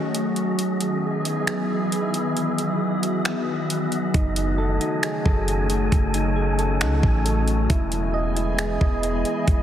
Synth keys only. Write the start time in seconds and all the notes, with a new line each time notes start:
4.14 D#4
4.58 A4
4.81 D#4
5.03 G#4
5.25 A4
5.70 G#4
6.15 D#4
6.36 G#4
6.59 A4
6.81 D#4
7.25 A4
7.70 E4
8.14 D#5
8.36 E4
8.59 G#4
8.81 D#5
9.25 G#4